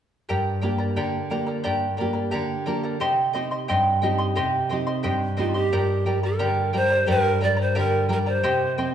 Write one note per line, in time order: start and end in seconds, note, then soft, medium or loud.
0.29 0.95 G2 medium
0.29 0.63 G4 medium
0.29 0.61 A#4 medium
0.29 0.61 D5 medium
0.29 0.60 G5 medium
0.29 0.62 A#5 medium
0.61 1.17 A#3 soft
0.61 1.18 D4 soft
0.61 1.18 G4 soft
0.61 0.79 A#4 medium
0.61 0.78 D5 soft
0.61 0.79 G5 soft
0.61 0.77 A#5 medium
0.78 0.95 A#4 soft
0.78 0.96 D5 soft
0.78 0.96 A#5 soft
0.96 1.63 D3 medium
0.96 1.31 G4 medium
0.96 1.29 A#4 medium
0.96 1.30 D5 medium
0.96 1.29 G5 medium
0.96 1.30 A#5 medium
1.30 1.85 A#3 soft
1.30 1.86 D4 soft
1.30 1.86 G4 soft
1.30 1.47 A#4 medium
1.30 1.46 D5 medium
1.30 1.48 G5 medium
1.30 1.45 A#5 medium
1.47 1.62 A#4 soft
1.47 1.63 D5 soft
1.47 1.63 A#5 soft
1.64 2.31 G2 medium
1.64 1.98 G4 medium
1.64 1.97 A#4 medium
1.64 1.97 D5 medium
1.64 1.96 G5 medium
1.64 1.97 A#5 medium
1.97 2.54 A#3 soft
1.97 2.54 D4 soft
1.97 2.13 A#4 medium
1.97 2.13 D5 medium
1.97 2.15 G5 medium
1.97 2.12 A#5 medium
2.01 2.54 G4 soft
2.13 2.30 A#4 soft
2.13 2.31 D5 soft
2.13 2.31 A#5 soft
2.31 2.99 D3 medium
2.31 2.66 G4 medium
2.31 2.65 A#4 medium
2.31 2.65 D5 medium
2.31 2.65 G5 medium
2.31 2.66 A#5 medium
2.66 2.94 A#3 soft
2.66 2.95 D4 soft
2.66 2.95 G4 soft
2.66 2.83 A#4 medium
2.66 2.83 D5 medium
2.66 2.83 G5 medium
2.66 2.82 A#5 medium
2.83 3.00 A#4 soft
2.83 3.01 D5 soft
2.83 3.01 A#5 soft
3.00 3.67 C3 soft
3.00 3.34 G4 medium
3.00 3.33 C5 medium
3.00 3.33 D#5 medium
3.00 3.32 G5 medium
3.00 3.34 C6 medium
3.33 3.89 C4 soft
3.33 3.89 D#4 soft
3.33 3.89 G4 soft
3.33 3.51 C5 medium
3.33 3.51 D#5 medium
3.33 3.51 G5 medium
3.33 3.50 C6 medium
3.51 3.67 C5 soft
3.51 3.68 D#5 soft
3.51 3.68 C6 soft
3.68 4.35 G2 medium
3.68 4.02 G4 medium
3.68 4.01 C5 medium
3.68 4.02 D#5 medium
3.68 4.01 G5 medium
3.68 4.03 C6 medium
4.02 4.57 C4 soft
4.02 4.57 D#4 soft
4.02 4.58 G4 soft
4.02 4.19 C5 soft
4.02 4.18 D#5 medium
4.02 4.19 G5 medium
4.02 4.17 C6 medium
4.18 4.35 C5 soft
4.18 4.35 D#5 soft
4.18 4.35 C6 soft
4.35 5.03 C3 medium
4.35 4.70 G4 medium
4.35 4.69 C5 medium
4.35 4.69 D#5 medium
4.35 4.68 G5 medium
4.35 4.70 C6 medium
4.69 5.26 C4 soft
4.69 5.26 D#4 soft
4.69 5.26 G4 soft
4.69 4.87 C5 medium
4.69 4.86 D#5 medium
4.69 4.87 G5 medium
4.69 4.86 C6 medium
4.87 5.03 C5 soft
4.87 5.03 D#5 soft
4.87 5.03 C6 medium
5.03 5.70 G2 medium
5.03 5.38 G4 medium
5.03 5.36 C5 medium
5.03 5.36 D#5 medium
5.03 5.36 G5 medium
5.03 5.37 C6 medium
5.37 5.66 C4 soft
5.37 5.66 D#4 soft
5.37 5.66 G4 soft
5.37 5.55 C5 medium
5.37 5.54 D#5 medium
5.37 5.55 G5 medium
5.37 5.53 C6 medium
5.41 5.55 F4 medium
5.54 6.20 G4 medium
5.54 5.72 C5 soft
5.54 5.72 D#5 soft
5.54 5.72 C6 soft
5.72 7.04 G2 medium
5.72 6.06 G4 medium
5.72 6.05 A#4 medium
5.72 6.06 D5 medium
5.72 6.05 G5 medium
5.72 6.06 A#5 medium
6.06 6.39 G3 soft
6.06 6.23 A#4 medium
6.06 6.23 D5 soft
6.06 6.23 G5 medium
6.06 6.22 A#5 medium
6.23 6.38 A#4 soft
6.23 6.71 A#4 medium
6.23 6.39 D5 soft
6.23 6.39 A#5 soft
6.39 6.73 D3 soft
6.39 6.74 G4 medium
6.39 6.72 A#4 medium
6.39 6.73 D5 medium
6.39 6.72 G5 medium
6.39 6.73 A#5 medium
6.73 7.07 G3 soft
6.73 6.91 A#4 medium
6.73 7.07 C5 medium
6.73 6.90 D5 medium
6.73 6.91 G5 soft
6.73 6.89 A#5 medium
6.90 7.06 A#4 soft
6.90 7.06 D5 soft
6.90 7.07 A#5 soft
7.06 8.40 G2 medium
7.06 7.41 G4 medium
7.06 7.40 A#4 medium
7.06 7.41 D5 medium
7.06 7.39 G5 medium
7.06 7.41 A#5 medium
7.11 7.41 A#4 medium
7.41 7.76 G3 soft
7.41 7.57 A#4 medium
7.41 7.57 D5 medium
7.41 7.63 D5 medium
7.41 7.58 G5 medium
7.41 7.55 A#5 medium
7.57 7.74 A#4 soft
7.57 7.75 D5 soft
7.57 7.75 A#5 medium
7.61 7.80 C5 medium
7.75 8.10 D3 soft
7.75 8.09 G4 medium
7.75 8.08 A#4 medium
7.75 8.11 A#4 medium
7.75 8.09 D5 medium
7.75 8.08 G5 medium
7.75 8.09 A#5 medium
8.09 8.42 G3 soft
8.09 8.27 A#4 medium
8.09 8.18 A#4 medium
8.09 8.26 D5 medium
8.09 8.26 G5 medium
8.09 8.25 A#5 medium
8.26 8.44 A#4 soft
8.26 8.91 C5 medium
8.26 8.43 D5 soft
8.26 8.44 A#5 soft
8.43 8.95 C3 medium
8.43 8.77 G4 medium
8.43 8.77 C5 medium
8.43 8.77 D#5 medium
8.43 8.77 G5 medium
8.43 8.77 C6 medium
8.78 8.95 C4 soft
8.78 8.95 C5 medium
8.78 8.94 D#5 medium
8.78 8.95 G5 medium
8.78 8.94 C6 medium